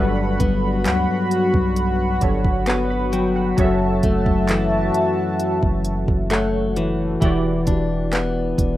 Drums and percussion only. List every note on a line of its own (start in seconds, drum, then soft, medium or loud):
0.40 kick medium
0.40 closed hi-hat medium
0.85 clap loud
0.85 closed hi-hat medium
1.31 closed hi-hat medium
1.54 kick loud
1.76 closed hi-hat medium
2.21 kick medium
2.21 closed hi-hat medium
2.45 kick loud
2.66 clap loud
2.66 closed hi-hat medium
3.13 closed hi-hat medium
3.58 kick loud
3.58 closed hi-hat medium
4.03 kick loud
4.03 closed hi-hat medium
4.26 kick loud
4.48 clap loud
4.48 closed hi-hat medium
4.94 closed hi-hat medium
5.40 closed hi-hat medium
5.63 kick medium
5.85 closed hi-hat medium
6.08 kick loud
6.30 clap loud
6.30 closed hi-hat medium
6.76 closed hi-hat medium
7.22 kick loud
7.22 closed hi-hat medium
7.67 kick medium
7.67 closed hi-hat medium
8.13 clap loud
8.13 closed hi-hat medium
8.58 kick medium
8.58 closed hi-hat medium